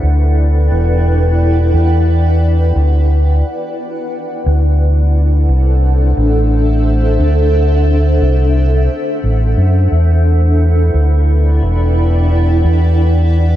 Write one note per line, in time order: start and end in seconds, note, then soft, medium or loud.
0.00 0.68 D2 medium
0.00 0.28 D4 medium
0.00 5.76 E4 medium
0.00 1.20 A4 medium
0.00 4.47 B4 medium
0.00 6.39 D5 medium
0.00 0.88 E5 medium
0.00 13.56 F#5 medium
0.00 4.46 G5 medium
0.72 1.71 E1 loud
1.74 2.73 E2 medium
2.76 3.41 D2 medium
4.46 5.46 D2 medium
4.46 12.11 D4 medium
4.71 12.11 A4 medium
4.98 9.92 C5 medium
5.48 6.14 C2 medium
5.48 11.45 E5 medium
6.17 7.16 A1 medium
7.19 8.18 D2 medium
8.22 8.87 C2 medium
9.24 9.54 A1 medium
9.58 9.88 F#2 medium
9.92 10.91 E2 medium
9.92 13.56 E4 medium
10.15 13.56 B4 medium
10.35 13.56 D5 medium
10.85 13.56 G5 medium
10.94 11.59 D2 medium
11.62 12.61 E1 loud
12.64 13.56 E2 medium